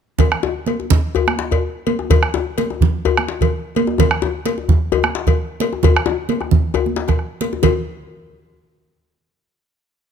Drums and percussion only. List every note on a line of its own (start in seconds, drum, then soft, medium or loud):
0.19 bombo low medium
0.19 cowbell medium
0.19 djembe slap soft
0.19 low conga medium
0.19 djembe bass soft
0.31 bombo rim medium
0.31 high conga soft
0.43 djembe slap medium
0.43 djembe tone soft
0.66 cowbell soft
0.66 djembe slap soft
0.66 high conga medium
0.80 djembe tone soft
0.90 bombo low medium
0.90 low conga medium
1.15 cowbell soft
1.15 djembe tone medium
1.15 djembe bass medium
1.27 bombo rim medium
1.27 high conga medium
1.39 djembe slap medium
1.51 bombo low medium
1.51 cowbell soft
1.51 djembe tone soft
1.87 cowbell soft
1.87 djembe slap soft
1.87 high conga medium
1.99 djembe tone medium
2.10 bombo low medium
2.10 cowbell medium
2.10 djembe slap soft
2.10 djembe bass medium
2.10 low conga medium
2.23 bombo rim medium
2.23 high conga soft
2.34 djembe slap medium
2.34 djembe tone medium
2.58 cowbell soft
2.58 djembe slap soft
2.58 high conga medium
2.70 djembe tone medium
2.81 bombo low medium
2.81 low conga medium
3.05 cowbell soft
3.05 djembe tone medium
3.05 djembe bass medium
3.17 bombo rim medium
3.17 high conga medium
3.28 djembe slap medium
3.41 bombo low medium
3.41 cowbell soft
3.41 djembe tone soft
3.41 low conga medium
3.75 cowbell soft
3.75 djembe slap soft
3.75 high conga medium
3.87 djembe tone medium
3.98 bombo low medium
3.98 cowbell medium
3.98 djembe slap soft
3.98 djembe bass medium
3.98 low conga medium
4.11 bombo rim medium
4.22 djembe slap medium
4.22 djembe tone medium
4.46 cowbell soft
4.46 djembe slap soft
4.46 high conga medium
4.58 djembe tone soft
4.69 bombo low loud
4.69 low conga medium
4.92 cowbell soft
4.92 djembe tone medium
4.92 djembe bass medium
5.03 bombo rim medium
5.03 high conga medium
5.15 djembe slap medium
5.27 bombo low medium
5.27 cowbell soft
5.27 djembe tone soft
5.27 low conga soft
5.60 cowbell soft
5.60 djembe slap soft
5.60 high conga medium
5.73 djembe tone medium
5.83 bombo low loud
5.83 cowbell medium
5.83 low conga medium
5.83 djembe bass medium
5.95 bombo rim medium
5.95 djembe slap soft
6.06 bombo rim soft
6.06 djembe slap medium
6.06 djembe tone medium
6.29 cowbell soft
6.29 high conga medium
6.41 bombo rim soft
6.41 djembe slap soft
6.41 djembe tone medium
6.51 bombo low medium
6.51 djembe slap soft
6.51 low conga medium
6.74 bombo rim soft
6.74 cowbell soft
6.74 djembe tone medium
6.74 djembe bass medium
6.86 djembe slap soft
6.86 high conga medium
6.96 djembe slap medium
6.96 high conga soft
7.08 bombo rim soft
7.08 bombo low medium
7.08 cowbell soft
7.08 djembe slap soft
7.08 djembe tone medium
7.08 low conga soft
7.19 bombo rim soft
7.41 cowbell soft
7.41 djembe slap soft
7.41 high conga medium
7.53 djembe tone medium
7.53 high conga soft
7.63 bombo low medium
7.63 cowbell medium
7.63 djembe bass medium
7.63 low conga medium